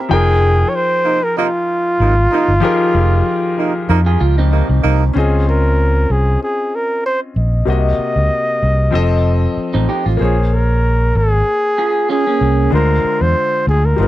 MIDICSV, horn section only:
0, 0, Header, 1, 2, 480
1, 0, Start_track
1, 0, Key_signature, -4, "minor"
1, 0, Tempo, 630915
1, 81, Time_signature, 4, 2, 24, 8
1, 10710, End_track
2, 0, Start_track
2, 0, Title_t, "Horn section"
2, 0, Program_c, 0, 61
2, 795, Note_on_c, 0, 63, 78
2, 797, Note_on_c, 0, 48, 68
2, 797, Note_on_c, 0, 58, 72
2, 908, Note_off_c, 0, 58, 0
2, 908, Note_off_c, 0, 63, 0
2, 909, Note_off_c, 0, 48, 0
2, 1035, Note_on_c, 0, 48, 93
2, 1035, Note_on_c, 0, 63, 95
2, 1037, Note_on_c, 0, 58, 81
2, 1119, Note_off_c, 0, 48, 0
2, 1119, Note_off_c, 0, 63, 0
2, 1121, Note_off_c, 0, 58, 0
2, 1517, Note_on_c, 0, 48, 64
2, 1517, Note_on_c, 0, 63, 68
2, 1519, Note_on_c, 0, 58, 59
2, 1628, Note_off_c, 0, 48, 0
2, 1628, Note_off_c, 0, 63, 0
2, 1629, Note_off_c, 0, 58, 0
2, 1758, Note_on_c, 0, 48, 74
2, 1759, Note_on_c, 0, 58, 72
2, 1759, Note_on_c, 0, 63, 91
2, 1912, Note_off_c, 0, 48, 0
2, 1912, Note_off_c, 0, 58, 0
2, 1912, Note_off_c, 0, 63, 0
2, 2717, Note_on_c, 0, 48, 63
2, 2717, Note_on_c, 0, 58, 64
2, 2717, Note_on_c, 0, 63, 75
2, 2828, Note_off_c, 0, 48, 0
2, 2828, Note_off_c, 0, 58, 0
2, 2828, Note_off_c, 0, 63, 0
2, 2956, Note_on_c, 0, 58, 85
2, 2956, Note_on_c, 0, 63, 95
2, 2957, Note_on_c, 0, 48, 89
2, 3039, Note_off_c, 0, 58, 0
2, 3040, Note_off_c, 0, 48, 0
2, 3040, Note_off_c, 0, 63, 0
2, 3432, Note_on_c, 0, 48, 71
2, 3432, Note_on_c, 0, 58, 61
2, 3433, Note_on_c, 0, 63, 73
2, 3545, Note_off_c, 0, 48, 0
2, 3545, Note_off_c, 0, 58, 0
2, 3546, Note_off_c, 0, 63, 0
2, 3674, Note_on_c, 0, 58, 75
2, 3674, Note_on_c, 0, 63, 81
2, 3675, Note_on_c, 0, 48, 69
2, 3829, Note_off_c, 0, 48, 0
2, 3829, Note_off_c, 0, 58, 0
2, 3829, Note_off_c, 0, 63, 0
2, 10710, End_track
0, 0, End_of_file